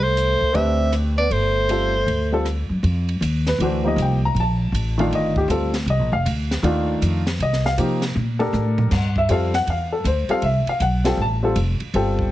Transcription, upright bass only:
0.00 0.37 C2 medium
0.40 muted upright bass stroke soft
0.54 1.27 D2 medium
1.30 2.03 G1 medium
2.06 2.65 D2 medium
2.69 2.82 F#2 medium
2.83 3.20 F2 medium
3.21 3.58 D#2 medium
3.58 3.96 D2 medium
3.96 4.34 C2 medium
4.35 4.72 A#1 medium
4.72 5.10 A1 medium
5.11 5.47 G1 medium
5.48 5.85 D2 medium
5.86 5.99 C2 medium
5.99 6.11 A#1 medium
6.12 6.24 F1 medium
6.25 6.62 D2 medium
6.62 7.00 D#2 medium
7.01 7.38 F2 medium
7.39 7.76 C2 medium
7.78 8.14 C3 medium
8.16 8.52 A#2 medium
8.53 8.90 A2 medium
8.91 9.28 G2 medium
9.29 9.66 F2 medium
9.66 10.03 E2 medium
10.04 10.27 D2 medium
10.29 muted upright bass stroke soft
10.42 10.65 C2 medium
10.66 muted upright bass stroke soft
10.80 11.17 B1 medium
11.17 11.55 A1 medium
11.55 11.79 F1 medium
11.80 muted upright bass stroke soft
11.93 12.31 G1 medium

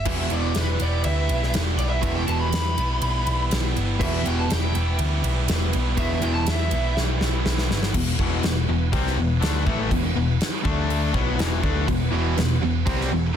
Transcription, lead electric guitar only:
0.00 0.30 E5 medium
0.32 0.56 D5 loud
0.56 0.80 B4 medium
0.82 1.04 D5 medium
1.04 1.53 E5 loud
1.79 1.89 D5 loud
1.89 2.14 E5 medium
2.14 2.27 G5 loud
2.27 2.40 A5 loud
2.39 2.49 B5 medium
2.50 3.47 B5 loud
4.01 4.25 E5 loud
4.26 4.39 G5 medium
4.39 4.50 A5 loud
4.51 4.98 G5 loud
5.99 6.22 E5 loud
6.22 6.33 G5 loud
6.34 6.46 A5 medium
6.47 6.95 E5 loud

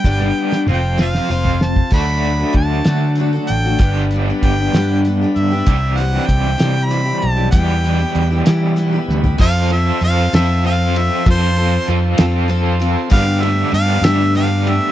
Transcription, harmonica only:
0.00 0.65 G5 medium
0.72 0.99 G5 medium
1.02 1.64 F5 medium
1.62 1.93 A5 medium
1.94 2.52 B5 loud
2.56 3.14 A5 medium
3.48 4.07 G5 loud
4.44 5.01 G5 medium
5.36 5.98 E5 medium
5.96 6.28 F#5 medium
6.26 6.87 G5 medium
6.85 7.20 B5 loud
7.19 7.51 A5 loud
7.51 8.41 G5 medium
9.41 9.70 F5 loud
9.72 10.02 E5 medium
10.04 10.33 F5 loud
10.35 10.64 E5 loud
10.66 11.00 F5 loud
10.99 11.27 E5 loud
11.31 11.89 C5 loud
13.12 13.45 F5 loud
13.43 13.73 E5 medium
13.74 14.07 F5 loud
14.05 14.35 E5 loud
14.36 14.71 F5 loud
14.69 14.92 E5 loud

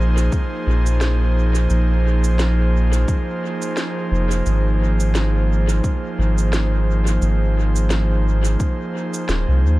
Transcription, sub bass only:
0.00 0.30 A#1 loud
0.67 1.68 A#1 medium
1.70 3.05 A#1 loud
4.12 4.43 F1 loud
4.46 5.81 G#1 loud
6.19 7.19 G#1 medium
7.22 8.57 G#1 loud
9.29 9.46 D#1 loud
9.48 9.65 C2 medium
9.64 9.79 D#2 medium

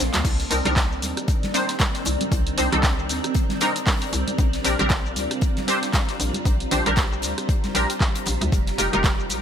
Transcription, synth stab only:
0.50 0.63 C4 medium
0.50 0.63 D4 medium
0.50 0.63 D#4 medium
0.50 0.63 A#4 medium
0.65 0.81 C4 medium
0.65 0.82 D4 medium
0.65 0.82 D#4 medium
0.65 0.82 A#4 loud
1.54 1.73 C4 loud
1.54 1.73 D4 medium
1.54 1.73 D#4 medium
1.54 1.73 C5 loud
2.57 2.69 C4 medium
2.57 2.69 D4 medium
2.57 2.69 D#4 medium
2.57 2.69 C5 loud
2.72 2.88 C4 loud
2.72 2.88 D4 medium
2.72 2.89 D#4 medium
2.72 2.89 A4 loud
3.61 3.73 C4 loud
3.61 3.73 D4 medium
3.61 3.74 D#4 medium
3.61 3.74 A#4 loud
4.64 4.77 C4 medium
4.64 4.77 D4 medium
4.64 4.77 G4 medium
4.64 4.77 A#4 medium
4.79 4.95 C4 medium
4.79 4.95 D4 medium
4.79 4.95 G4 medium
4.79 4.95 A#4 loud
5.68 5.86 C4 medium
5.68 5.86 D4 medium
5.68 5.87 G4 medium
5.68 5.87 C5 loud
6.71 6.82 C4 medium
6.71 6.83 D4 medium
6.71 6.83 G4 medium
6.71 6.83 C5 medium
6.86 7.02 C4 loud
6.86 7.02 D4 medium
6.86 7.02 G4 medium
6.86 7.02 A#4 loud
7.75 7.87 C4 medium
7.75 7.87 D4 medium
7.75 7.87 G4 medium
7.75 7.87 A#4 loud
8.78 8.91 D#4 medium
8.78 8.91 F4 medium
8.78 8.91 G4 medium
8.78 8.91 A#4 medium
8.93 9.09 D#4 medium
8.93 9.09 F4 medium
8.93 9.09 G4 medium
8.93 9.09 A#4 loud

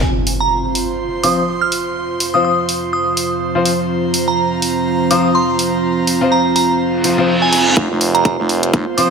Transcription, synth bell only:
0.40 0.53 A#5 medium
1.23 1.59 D#6 medium
1.61 1.74 F6 medium
2.34 2.41 D#6 medium
2.45 2.53 D#6 medium
2.93 3.31 D#6 medium
4.28 4.41 A#5 medium
5.11 5.46 D#6 medium
5.35 6.03 C6 medium
6.32 6.47 A#5 medium
6.56 6.71 A#5 medium
7.42 7.49 G#5 medium
7.52 7.61 G#5 medium
8.14 8.28 A#5 medium
8.97 9.10 D#6 medium

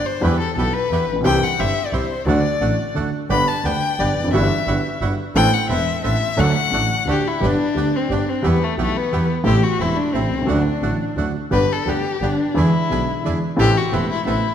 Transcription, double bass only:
0.23 0.37 E2 medium
0.57 0.71 B1 medium
0.91 1.05 E2 medium
1.08 1.24 A#1 medium
1.24 1.39 C2 medium
1.60 1.74 G1 medium
1.92 2.07 C2 medium
2.26 2.41 D2 medium
2.61 2.75 A1 medium
2.96 3.10 D2 soft
3.30 3.45 G1 medium
3.65 3.79 D2 medium
3.99 4.14 G1 medium
4.16 4.33 F1 medium
4.34 4.48 G1 medium
4.67 4.82 G1 medium
5.01 5.16 G1 medium
5.35 5.50 A1 medium
5.70 5.84 E1 medium
6.04 6.18 A1 medium
6.37 6.52 D2 medium
6.73 6.87 A1 medium
7.07 7.22 D2 medium
7.42 7.56 G1 medium
7.76 7.91 D2 soft
8.10 8.25 G1 medium
8.45 8.59 E2 medium
8.78 8.93 B1 medium
9.13 9.27 E2 medium
9.47 9.61 A1 medium
9.80 9.94 E1 medium
10.14 10.29 A1 medium
10.30 10.47 C2 medium
10.48 10.63 D2 medium
10.82 10.97 A1 medium
11.16 11.32 D2 medium
11.53 11.67 G1 medium
11.86 12.01 D2 medium
12.21 12.36 G1 medium
12.56 12.71 E2 medium
12.91 13.05 B1 medium
13.26 13.39 E2 medium
13.59 13.73 A1 medium
13.93 14.07 E1 medium
14.28 14.41 A1 medium

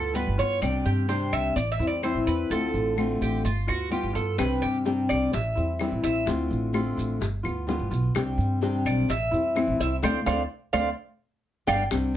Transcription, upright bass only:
0.00 0.25 D2 medium
0.27 0.38 G1 medium
0.38 0.61 G2 loud
0.61 0.84 C2 medium
0.85 1.30 G2 medium
1.32 1.55 C2 medium
1.56 1.78 A1 loud
1.79 2.13 E2 medium
2.14 2.26 A1 medium
2.27 2.49 E2 medium
2.50 2.73 D2 medium
2.74 3.19 A1 medium
3.21 3.43 A1 medium
3.44 3.67 G1 loud
3.69 4.02 D2 medium
4.03 4.15 G1 medium
4.15 4.38 G2 medium
4.39 4.61 C2 medium
4.63 5.07 G2 medium
5.10 5.32 C2 medium
5.33 5.56 A1 loud
5.57 5.90 E2 medium
5.92 6.03 A1 medium
6.03 6.26 A1 medium
6.27 6.50 D2 medium
6.51 6.95 A1 loud
6.97 7.20 A1 medium
7.21 7.43 G1 loud
7.44 7.78 D2 loud
7.79 7.90 G1 medium
7.91 8.14 B1 loud
8.15 8.37 C2 medium
8.38 8.83 G2 loud
8.85 9.08 B1 loud
9.09 9.31 A1 loud
9.32 9.66 E2 medium
9.67 9.79 A1 medium
9.80 10.02 C2 medium
10.03 10.20 D2 loud
10.26 10.44 D2 loud
10.73 10.91 D2 medium
11.68 11.85 G1 loud
11.91 12.13 C2 medium

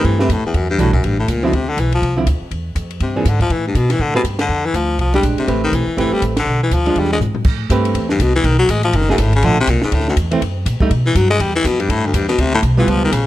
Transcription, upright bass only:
0.04 0.28 G2 medium
0.29 0.43 F2 medium
0.44 muted upright bass stroke soft
0.54 0.78 E2 medium
0.79 1.03 B1 medium
1.03 1.27 A1 medium
1.28 1.52 C#2 medium
1.52 1.77 D2 medium
1.77 2.01 B1 medium
2.02 2.26 C2 medium
2.26 2.40 D2 medium
2.41 muted upright bass stroke soft
2.51 2.75 E2 medium
2.75 3.00 F2 medium
3.00 3.24 G2 medium
3.25 3.49 G#2 medium
3.50 3.74 A2 medium
3.74 3.98 B2 medium
3.99 4.23 A2 medium
4.24 4.48 G2 medium
4.48 4.73 F2 medium
4.74 4.98 D2 medium
4.98 5.23 C2 medium
5.23 5.37 A#1 medium
5.38 muted upright bass stroke soft
5.48 5.72 A1 medium
5.72 5.86 B1 medium
5.87 muted upright bass stroke soft
5.97 6.11 G1 medium
6.11 muted upright bass stroke soft
6.22 6.46 A1 medium
6.46 6.70 B1 medium
6.71 6.95 D2 medium
6.96 7.19 E2 medium
7.20 7.44 G#2 medium
7.45 7.69 A2 medium
7.70 7.93 G2 medium
7.94 8.18 E2 medium
8.19 8.43 C2 medium
8.44 8.68 B1 medium
8.68 8.93 A1 medium
8.93 9.17 F#1 medium
9.18 9.42 G#1 medium
9.42 9.67 A#1 medium
9.67 9.81 C2 medium
9.83 muted upright bass stroke soft
9.92 10.16 D2 medium
10.16 10.40 E2 medium
10.41 10.65 F#2 medium
10.66 10.79 A#2 medium
10.80 muted upright bass stroke soft
10.90 11.14 B2 medium
11.15 11.39 G2 medium
11.39 11.64 E2 medium
11.64 11.88 F2 medium
11.89 12.13 G2 medium
12.13 12.37 E2 medium
12.38 12.62 D2 medium
12.62 12.87 B1 medium
12.87 13.11 C#2 medium
13.12 13.27 A#1 medium

